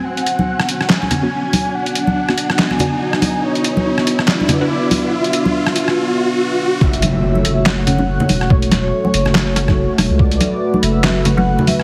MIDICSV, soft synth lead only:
0, 0, Header, 1, 2, 480
1, 0, Start_track
1, 0, Key_signature, 3, "minor"
1, 0, Tempo, 422535
1, 60, Time_signature, 4, 2, 24, 8
1, 13441, End_track
2, 0, Start_track
2, 0, Title_t, "Soft synth lead"
2, 0, Program_c, 0, 80
2, 56, Note_on_c, 0, 78, 113
2, 1014, Note_on_c, 0, 80, 115
2, 1031, Note_off_c, 0, 78, 0
2, 1977, Note_on_c, 0, 78, 105
2, 1994, Note_off_c, 0, 80, 0
2, 2936, Note_on_c, 0, 80, 111
2, 2953, Note_off_c, 0, 78, 0
2, 3893, Note_off_c, 0, 80, 0
2, 3900, Note_on_c, 0, 73, 102
2, 4861, Note_on_c, 0, 74, 98
2, 4878, Note_off_c, 0, 73, 0
2, 5750, Note_on_c, 0, 78, 73
2, 5767, Note_off_c, 0, 74, 0
2, 5817, Note_on_c, 0, 76, 102
2, 5834, Note_off_c, 0, 78, 0
2, 6779, Note_off_c, 0, 76, 0
2, 7741, Note_on_c, 0, 76, 101
2, 8699, Note_on_c, 0, 78, 103
2, 8716, Note_off_c, 0, 76, 0
2, 9660, Note_on_c, 0, 73, 93
2, 9677, Note_off_c, 0, 78, 0
2, 9893, Note_off_c, 0, 73, 0
2, 9899, Note_on_c, 0, 73, 109
2, 11294, Note_off_c, 0, 73, 0
2, 11578, Note_on_c, 0, 74, 101
2, 12253, Note_off_c, 0, 74, 0
2, 12294, Note_on_c, 0, 76, 106
2, 12778, Note_on_c, 0, 78, 102
2, 12795, Note_off_c, 0, 76, 0
2, 13011, Note_off_c, 0, 78, 0
2, 13018, Note_on_c, 0, 78, 102
2, 13258, Note_on_c, 0, 76, 102
2, 13275, Note_off_c, 0, 78, 0
2, 13441, Note_off_c, 0, 76, 0
2, 13441, End_track
0, 0, End_of_file